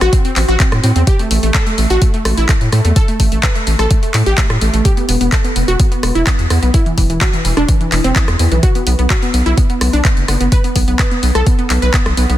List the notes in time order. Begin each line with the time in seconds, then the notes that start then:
0.01 A1 F#4, cross-stick, closed hi-hat
0.13 C4, kick, closed hi-hat
0.25 C4, closed hi-hat
0.36 A1 C4, clap, open hi-hat
0.48 A1 F#4, closed hi-hat
0.60 C4, kick, clap, closed hi-hat
0.72 A2, cross-stick, closed hi-hat
0.84 A2 C4, open hi-hat
0.96 E2 C4, closed hi-hat
1.07 G4, kick, closed hi-hat
1.19 A3, closed hi-hat
1.31 A1 A3, open hi-hat
1.43 A1 A3, closed hi-hat
1.54 A4, kick, clap, closed hi-hat
1.67 A3, closed hi-hat
1.78 A1 A3, open hi-hat
1.90 A1 F#4, closed hi-hat
2.02 A3, kick, closed hi-hat
2.14 A3, closed hi-hat
2.25 A1 A3, cross-stick, open hi-hat
2.37 A1 E4, closed hi-hat
2.49 A3, kick, clap, closed hi-hat
2.61 A2, closed hi-hat
2.73 A2 A3, cross-stick, open hi-hat
2.85 E2 A3, closed hi-hat
2.96 A4, kick, closed hi-hat
3.08 A3, closed hi-hat
3.20 A1 A3, kick, open hi-hat
3.32 A1 A3, closed hi-hat
3.43 B4, kick, clap, closed hi-hat
3.55 A3, closed hi-hat
3.67 A1 A3, open hi-hat
3.79 A1 A4, cross-stick, closed hi-hat
3.91 A3, kick, closed hi-hat
4.03 A3, closed hi-hat
4.14 A2 A3, clap, open hi-hat
4.26 A1 G4, closed hi-hat
4.38 A3, kick, clap, closed hi-hat
4.50 A2, cross-stick, closed hi-hat
4.61 A1 A3, open hi-hat
4.74 A1 A3, closed hi-hat
4.85 G4, kick, closed hi-hat
4.97 B3, closed hi-hat
5.09 E1 B3, open hi-hat
5.21 E1 B3, closed hi-hat
5.32 A4, kick, clap, closed hi-hat
5.44 B3, closed hi-hat
5.56 E1 B3, open hi-hat
5.68 E1 F#4, closed hi-hat
5.79 B3, kick, closed hi-hat
5.92 B3, closed hi-hat
6.03 E1 B3, cross-stick, open hi-hat
6.15 E1 E4, closed hi-hat
6.27 B3, kick, clap, closed hi-hat
6.39 E2, closed hi-hat
6.50 E2 B3, cross-stick, open hi-hat
6.63 B1 B3, closed hi-hat
6.74 E4, kick, closed hi-hat
6.86 E3, closed hi-hat
6.98 E1 E3, kick, open hi-hat
7.10 E1 E3, closed hi-hat
7.21 F#4, kick, clap, closed hi-hat
7.33 E3, closed hi-hat
7.45 E1 E3, open hi-hat
7.57 E1 D4, cross-stick, closed hi-hat
7.68 E3, kick, closed hi-hat
7.81 E3, closed hi-hat
7.92 E1 E3, clap, open hi-hat
8.04 E1 C4, closed hi-hat
8.16 kick, clap, closed hi-hat
8.28 E2, cross-stick, closed hi-hat
8.39 E2 E3, open hi-hat
8.52 B1 E3, closed hi-hat
8.63 F#4, kick, closed hi-hat
8.75 B3, closed hi-hat
8.87 B1 B3, open hi-hat
8.99 B1 B3, closed hi-hat
9.10 F#4, kick, clap, closed hi-hat
9.22 B3, closed hi-hat
9.34 B1 B3, open hi-hat
9.46 B1 E4, closed hi-hat
9.58 B3, kick, closed hi-hat
9.70 B3, closed hi-hat
9.81 B1 B3, cross-stick, open hi-hat
9.93 B1 D4, closed hi-hat
10.05 B3, kick, clap, closed hi-hat
10.17 F#1, closed hi-hat
10.28 F#1 B3, cross-stick, open hi-hat
10.41 F#1 B3, closed hi-hat
10.52 B4, kick, closed hi-hat
10.64 B3, closed hi-hat
10.76 B1 B3, kick, open hi-hat
10.88 B1 B3, closed hi-hat
10.99 B4, kick, clap, closed hi-hat
11.11 B3, closed hi-hat
11.23 B1 B3, open hi-hat
11.35 B1 A4, cross-stick, closed hi-hat
11.47 B3, kick, closed hi-hat
11.59 B3, closed hi-hat
11.70 B1 B3, clap, open hi-hat
11.82 B1 B4, closed hi-hat
11.94 B3, kick, clap, closed hi-hat
12.06 B1, cross-stick, closed hi-hat
12.17 B1 B3, open hi-hat
12.30 B1 B3, closed hi-hat